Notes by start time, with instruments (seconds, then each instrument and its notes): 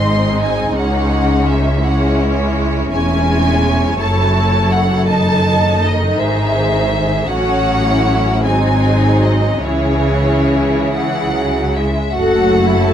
Already playing: double bass section G#1, cello section G#2, viola section G#3 C4, violin section D#4 D#5 C6
0.41 violin section G#5
0.75 double bass section C#2, cello section C#2, viola section G#3 C#4, violin section C#5 F#5
1.48 violin section E5
1.82 viola section G#3 C#4, violin section E4 C#5 F#5
2.90 double bass section E1, cello section E2, viola section G#3 C#4, violin section E4 C#5 G#5
3.98 double bass section F#1, cello section F#2, viola section F#3 E4, violin section A4 A5
4.71 violin section F#5
5.08 viola section D#3 D#4, violin section D#5 A5
5.84 violin section D#5
6.20 double bass section G#1, cello section G#2, violin section G#4 C5 E5
7.29 double bass section A1, cello section A2, viola section C#4, violin section F#4 C#5 F#5
7.33 viola section F#3
7.88 violin section E4
8.44 double bass section G#1, cello section G#2, viola section F#3 C4, violin section D#4 G#4 G#5
9.23 violin section D#5
9.64 double bass section C#2, cello section C#3, viola section E3 C#4, violin section E4 G#4 C#5
10.93 viola section E3, violin section F#5
11.34 viola section F#3
11.76 viola section G#3, violin section E5
12.13 double bass section F#1, cello section F#2, viola section A3 F#4, violin section F#4 A4 F#5
12.67 viola section E4, violin section A4
12.85 violin section A5